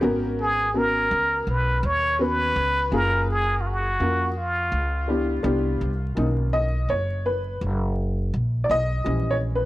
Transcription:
0.01 1.07 G#1 medium
0.01 0.63 B3 medium
0.01 0.64 C#4 medium
0.01 0.64 F#4 medium
0.01 0.64 A#4 loud
0.41 0.79 G#4 loud
0.74 1.77 B3 medium
0.74 1.78 C#4 medium
0.74 1.78 F#4 medium
0.74 1.78 A#4 medium
0.74 1.48 A#4 loud
1.11 1.45 C#2 loud
1.47 1.81 B1 medium
1.47 1.87 B4 loud
1.83 2.52 D#2 loud
1.83 2.25 C#5 loud
2.19 2.91 B3 medium
2.19 2.90 C#4 medium
2.19 2.92 F#4 medium
2.19 2.92 B4 medium
2.23 2.95 B4 loud
2.56 2.90 C#2 loud
2.91 3.96 F#1 medium
2.91 3.82 A#3 medium
2.91 3.82 C#4 medium
2.91 3.82 F4 medium
2.91 3.83 G#4 medium
2.91 3.29 A#4 loud
3.31 3.63 G#4 loud
3.61 3.68 F4 medium
3.66 4.39 F#4 loud
4.00 4.69 F2 medium
4.00 4.28 A#3 medium
4.00 4.28 C#4 medium
4.00 4.28 F4 medium
4.00 4.29 A#4 medium
4.38 5.09 F4 medium
4.72 5.41 C#2 loud
5.08 5.36 B3 medium
5.08 5.37 D4 medium
5.08 5.37 E4 medium
5.08 5.37 G4 medium
5.43 5.79 C2 loud
5.43 5.89 B3 medium
5.43 5.89 D4 medium
5.43 5.89 E4 medium
5.43 5.90 G4 medium
5.81 6.15 C2 medium
6.15 6.85 B1 loud
6.15 6.67 D#3 medium
6.15 6.68 A#3 soft
6.15 6.68 C#4 medium
6.15 6.26 D#4 medium
6.53 6.90 D#5 medium
6.89 7.57 F#1 medium
6.89 7.27 C#5 loud
7.26 7.59 B4 medium
7.61 8.30 F#1 medium
8.34 8.68 A#1 medium
8.64 8.70 D5 medium
8.70 9.04 B1 medium
8.70 9.32 D#5 loud
9.04 9.65 A#1 loud
9.04 9.65 E3 medium
9.04 9.65 G3 soft
9.04 9.65 C#4 medium
9.31 9.36 C#5 medium
9.55 9.65 B4 medium

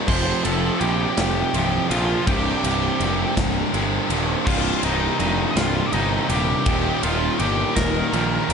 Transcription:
0.07 0.32 F1 medium
0.07 0.44 F2 loud
0.07 0.44 C3 loud
0.07 0.45 F3 loud
0.07 0.42 C5 medium
0.07 0.42 C6 loud
0.07 kick loud
0.07 crash loud
0.44 0.69 F1 medium
0.44 0.80 F2 loud
0.44 0.81 C3 loud
0.44 0.81 F3 loud
0.44 0.78 A4 medium
0.44 0.82 A5 medium
0.44 ride medium
0.80 1.05 A#1 loud
0.80 1.53 F2 loud
0.80 1.53 C3 loud
0.80 1.54 F3 loud
0.80 1.86 G4 medium
0.80 1.94 G5 loud
0.80 ride medium
1.17 1.42 F1 loud
1.17 snare loud
1.17 ride loud
1.54 1.78 C1 medium
1.54 1.90 F2 medium
1.54 1.90 C3 medium
1.54 1.91 F3 loud
1.54 ride medium
1.90 2.14 A#1 loud
1.90 2.25 F2 medium
1.90 2.25 C3 loud
1.90 2.26 F3 loud
1.90 2.24 F4 medium
1.90 2.28 F5 medium
1.90 ride medium
2.27 2.51 C1 loud
2.27 2.62 C2 loud
2.27 2.62 G2 loud
2.27 2.63 C3 loud
2.27 3.33 G4 medium
2.27 3.33 G5 medium
2.27 kick loud
2.27 ride loud
2.63 2.88 C1 medium
2.63 3.00 C2 loud
2.63 2.99 G2 loud
2.63 3.01 C3 loud
2.63 ride medium
3.00 3.24 F1 medium
3.00 3.72 C2 loud
3.00 3.72 G2 loud
3.00 3.72 C3 loud
3.00 ride medium
3.37 3.61 C1 medium
3.37 kick medium
3.37 snare loud
3.37 ride loud
3.73 3.98 G1 medium
3.73 4.09 C2 medium
3.73 4.09 G2 loud
3.73 4.10 C3 medium
3.73 ride medium
4.10 4.34 D#1 medium
4.10 4.45 C2 medium
4.10 4.45 G2 medium
4.10 4.45 C3 medium
4.10 ride medium
4.46 4.71 C1 loud
4.46 4.82 C2 loud
4.46 4.83 G2 loud
4.46 4.84 C3 loud
4.46 4.81 F4 medium
4.46 4.84 F5 loud
4.46 kick loud
4.46 crash loud
4.83 5.07 C1 medium
4.83 5.19 C2 medium
4.83 5.20 G2 loud
4.83 5.20 C3 loud
4.83 5.18 D#4 medium
4.83 5.19 D#5 medium
4.83 ride medium
5.20 5.44 F1 loud
5.20 5.92 C2 loud
5.20 5.93 G2 loud
5.20 5.94 C3 loud
5.20 5.48 D#4 medium
5.20 5.49 D#5 medium
5.20 ride medium
5.51 5.57 D#5 medium
5.56 5.80 C1 loud
5.56 5.85 F4 medium
5.56 5.87 F5 loud
5.56 snare loud
5.56 ride loud
5.86 5.92 D5 medium
5.93 6.17 G1 medium
5.93 6.28 C2 medium
5.93 6.28 G2 medium
5.93 6.29 C3 loud
5.93 6.28 D#4 medium
5.93 6.27 D#5 loud
5.93 ride medium
6.28 6.54 D#1 medium
6.28 6.64 C2 medium
6.28 6.64 G2 medium
6.28 6.64 C3 loud
6.28 6.99 G4 medium
6.28 7.03 G5 loud
6.28 ride medium
6.66 6.90 D#1 medium
6.66 7.02 D#2 loud
6.66 7.02 A#2 loud
6.66 7.02 D#3 loud
6.66 kick loud
6.66 ride loud
7.03 7.27 D#1 medium
7.03 7.39 D#2 medium
7.03 7.39 A#2 loud
7.03 7.39 D#3 loud
7.03 7.38 F4 medium
7.03 7.39 F5 loud
7.03 ride medium
7.39 7.64 G1 medium
7.39 8.12 D#2 loud
7.39 8.12 A#2 loud
7.39 8.13 D#3 loud
7.39 7.74 G4 medium
7.39 7.77 G5 loud
7.39 ride medium
7.76 8.01 D#1 loud
7.76 8.53 A#4 medium
7.76 8.53 A#5 loud
7.76 kick medium
7.76 snare loud
7.76 ride loud
8.13 8.37 A#1 medium
8.13 8.49 D#2 medium
8.13 8.50 A#2 loud
8.13 8.50 D#3 loud
8.13 ride medium
8.49 8.53 E1 loud
8.49 8.53 D#2 medium
8.49 ride medium

